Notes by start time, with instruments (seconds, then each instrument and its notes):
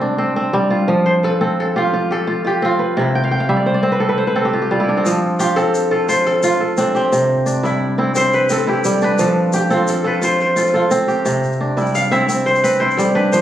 Already playing: kora C3 G3 C4 E4 F4 G4
0.01 kora D4
0.18 kora C4
0.36 kora C4
0.53 kora G3
0.70 kora F4
0.88 kora F3
1.06 kora C5
1.23 kora A4 B4
1.41 kora C4 A4
1.60 kora A4
1.76 kora F4 G4
1.93 kora F4
2.11 kora G4 A4
2.27 kora F4
2.45 kora F4 G4
2.62 kora C4 F4
2.79 kora B4
2.97 kora C3 E4
3.15 kora G5
3.24 kora F5
3.31 kora G5
3.40 kora F5
3.49 kora G3 E5
3.57 kora D5
3.66 kora C5
3.74 kora D5
3.83 kora C4 C5
3.92 kora B4
4.00 kora A4
4.09 kora B4
4.18 kora C5
4.27 kora B4
4.36 kora C4 A4
4.45 kora G4
4.53 kora F4
4.62 kora G4
4.71 kora G3 F4
4.80 kora E4
4.89 kora D4
4.97 kora C4
5.06 kora F3, shaker
5.39 kora F4 G4, shaker
5.56 kora C4 A4, shaker
5.75 shaker
5.91 kora F4 A4
6.08 kora F4 C5, shaker
6.26 kora A4, shaker
6.43 kora F4, shaker
6.60 kora A4
6.77 kora C4 D4, shaker
6.95 kora C4 G4, shaker
7.12 kora C3, shaker
7.46 kora D4, shaker
7.63 kora G3 E4, shaker
7.98 kora C4 E4
8.15 kora C4 C5, shaker
8.33 kora B4, shaker
8.49 kora C4 A4, shaker
8.58 shaker
8.67 kora E4 G4
8.84 kora G3, shaker
9.01 kora D4 B4, shaker
9.18 kora F3 A4, shaker
9.53 kora G4, shaker
9.70 kora C4 F4 A4, shaker
9.88 kora A4, shaker
10.04 kora F4 A4 B4
10.22 kora F4 C5, shaker
10.40 kora C5, shaker
10.56 kora F4 A4, shaker
10.66 shaker
10.74 kora F4 A4
10.91 kora C4, shaker
11.08 kora G4, shaker
11.25 kora C3, shaker
11.44 shaker
11.52 shaker
11.61 kora D4
11.77 kora G3 E4, shaker
11.86 shaker
11.95 kora F5, shaker
12.11 kora C4 E4 E5, shaker
12.29 kora C4, shaker
12.46 kora C5, shaker
12.55 shaker
12.64 kora C4 B4, shaker
12.73 shaker
12.80 kora E4 C5
12.91 shaker
12.97 kora G3 A4, shaker
13.15 kora D4 B4
13.32 kora F3 C5, shaker